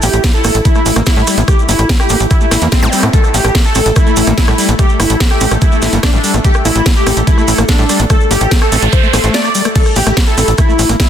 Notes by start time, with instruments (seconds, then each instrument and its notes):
Already playing: synth texture A3 E4
0.02 analog synth bass A1, acid bass A#3, analog synth lead G4, open hi-hat, shekere
0.13 analog synth bass A1, closed hi-hat, shekere
0.24 acid bass C4, kick, cross-stick, snare, closed hi-hat, shekere
0.34 analog synth lead A4, shekere
0.44 analog synth bass A1, acid bass A#3, cross-stick, open hi-hat, shekere
0.55 analog synth bass A1, closed hi-hat, shekere
0.65 acid bass A3, analog synth lead E4, kick, closed hi-hat, shekere
0.75 acid bass A3, cross-stick, shekere
0.86 analog synth bass A1, open hi-hat, shekere
0.96 analog synth bass A1, acid bass A#3, cross-stick, closed hi-hat, shekere
1.06 analog synth lead E4, kick, snare, closed hi-hat, shekere
1.17 analog synth bass A2, acid bass G3, shekere
1.27 acid bass G3, cross-stick, open hi-hat, shekere
1.38 analog synth bass A1, acid bass C4, closed hi-hat, shekere
1.48 acid bass A3, analog synth lead G4, kick, cross-stick, closed hi-hat, shekere
1.59 shekere
1.69 analog synth bass G1, acid bass A#3, analog synth lead E4, open hi-hat, shekere
1.79 analog synth bass A1, cross-stick, closed hi-hat, shekere
1.89 acid bass C4, kick, snare, closed hi-hat, shekere
2.00 analog synth lead G4, cross-stick, shekere
2.09 analog synth bass A1, acid bass A#3, open hi-hat, shekere
2.20 analog synth bass A1, closed hi-hat, shekere
2.30 acid bass A3, analog synth lead E4, kick, cross-stick, closed hi-hat, shekere
2.41 acid bass A3, shekere
2.51 analog synth bass A1, cross-stick, snare, open hi-hat, shekere
2.62 analog synth bass E2, acid bass A#3, closed hi-hat, shekere
2.72 analog synth lead C4, kick, snare, closed hi-hat, shekere
2.82 analog synth bass A2, acid bass G3, cross-stick, zap, shekere
2.92 acid bass G3, open hi-hat, shekere
3.03 analog synth bass A2, acid bass C4, cross-stick, closed hi-hat, shekere
3.13 acid bass A3, analog synth lead A4, synth texture A4, kick, closed hi-hat, shekere
3.24 cross-stick, shekere
3.34 analog synth bass A1, acid bass A#3, analog synth lead G4, open hi-hat, shekere
3.44 analog synth bass A1, cross-stick, closed hi-hat, shekere
3.55 acid bass C4, kick, snare, closed hi-hat, shekere
3.65 analog synth lead A4, shekere
3.75 analog synth bass A1, acid bass C4, cross-stick, open hi-hat, shekere
3.86 analog synth bass A1, closed hi-hat, shekere
3.96 acid bass A3, analog synth lead E4, kick, cross-stick, closed hi-hat, shekere
4.07 acid bass A3, shekere
4.16 analog synth bass A1, open hi-hat, shekere
4.27 analog synth bass A1, acid bass A#3, cross-stick, closed hi-hat, shekere
4.38 analog synth lead E4, kick, snare, closed hi-hat, shekere
4.48 analog synth bass A2, acid bass G3, cross-stick, shekere
4.58 acid bass G3, open hi-hat, shekere
4.68 analog synth bass A1, acid bass C4, closed hi-hat, shekere
4.79 acid bass A3, analog synth lead G4, kick, cross-stick, closed hi-hat, shekere
4.89 shekere
5.00 analog synth bass G1, acid bass A#3, analog synth lead E4, cross-stick, open hi-hat, shekere
5.10 analog synth bass A1, closed hi-hat, shekere
5.20 acid bass C4, kick, snare, closed hi-hat, shekere
5.30 analog synth lead G4, cross-stick, shekere
5.41 analog synth bass A1, acid bass C4, open hi-hat, shekere
5.51 analog synth bass A1, cross-stick, closed hi-hat, shekere
5.61 acid bass A3, analog synth lead E4, kick, closed hi-hat, shekere
5.72 acid bass A3, shekere
5.82 analog synth bass A1, cross-stick, snare, open hi-hat, shekere
5.93 analog synth bass G1, acid bass A#3, closed hi-hat, shekere
6.03 analog synth lead D4, kick, cross-stick, snare, closed hi-hat, shekere
6.13 analog synth bass A1, acid bass G3, shekere
6.24 acid bass G3, open hi-hat, shekere
6.34 analog synth bass A1, acid bass C4, cross-stick, closed hi-hat, shekere
6.45 acid bass A3, analog synth lead G4, kick, closed hi-hat, shekere
6.54 cross-stick, shekere
6.65 analog synth bass A1, acid bass A#3, analog synth lead E4, open hi-hat, shekere
6.76 analog synth bass A1, closed hi-hat, shekere
6.86 acid bass C4, kick, cross-stick, snare, closed hi-hat, shekere
6.96 analog synth lead G4, shekere
7.07 analog synth bass A1, acid bass C4, cross-stick, open hi-hat, shekere
7.17 analog synth bass A1, closed hi-hat, shekere
7.27 acid bass A3, analog synth lead E4, kick, closed hi-hat, shekere
7.38 acid bass A3, cross-stick, shekere
7.48 analog synth bass A1, open hi-hat, shekere
7.58 analog synth bass A1, acid bass A#3, cross-stick, closed hi-hat, shekere
7.68 analog synth lead D4, kick, snare, closed hi-hat, shekere
7.79 analog synth bass A2, acid bass G3, shekere
7.89 acid bass G3, cross-stick, open hi-hat, shekere
7.99 analog synth bass A1, acid bass C4, closed hi-hat, shekere
8.10 acid bass A3, analog synth lead A4, kick, cross-stick, closed hi-hat, noise sweep, shekere
8.20 shekere
8.31 analog synth bass G1, acid bass A#3, analog synth lead G4, open hi-hat, shekere
8.41 analog synth bass A1, cross-stick, closed hi-hat, shekere
8.51 acid bass C4, kick, snare, closed hi-hat, shekere
8.61 analog synth lead A4, cross-stick, shekere
8.72 analog synth bass A1, acid bass C4, open hi-hat, shekere
8.82 analog synth bass A1, closed hi-hat, shekere
8.92 acid bass A3, analog synth lead C5, kick, cross-stick, closed hi-hat, shekere
9.03 acid bass A3, shekere
9.13 analog synth bass A1, cross-stick, snare, open hi-hat, shekere
9.24 analog synth bass A1, acid bass A3, closed hi-hat, shekere
9.34 analog synth lead D5, snare, closed hi-hat, shekere
9.44 acid bass A#3, cross-stick, shekere
9.55 acid bass G3, open hi-hat, shekere
9.65 acid bass A3, cross-stick, closed hi-hat, shekere
9.75 acid bass A3, synth texture A3 E4, analog synth lead A4, kick, closed hi-hat, crash, shekere
9.86 cross-stick, shekere
9.96 analog synth bass A1, acid bass A#3, analog synth lead G4, open hi-hat, shekere
10.07 analog synth bass A1, acid bass A3, cross-stick, closed hi-hat, shekere
10.17 acid bass C4, kick, snare, closed hi-hat, shekere
10.27 analog synth lead A4, shekere
10.38 analog synth bass A1, acid bass C4, cross-stick, open hi-hat, shekere
10.48 analog synth bass A1, closed hi-hat, shekere
10.58 acid bass A3, analog synth lead E4, kick, cross-stick, closed hi-hat, shekere
10.69 acid bass A3, shekere
10.79 analog synth bass A1, open hi-hat, shekere
10.89 analog synth bass A1, acid bass A#3, cross-stick, closed hi-hat, shekere
11.00 analog synth lead E4, kick, snare, closed hi-hat, shekere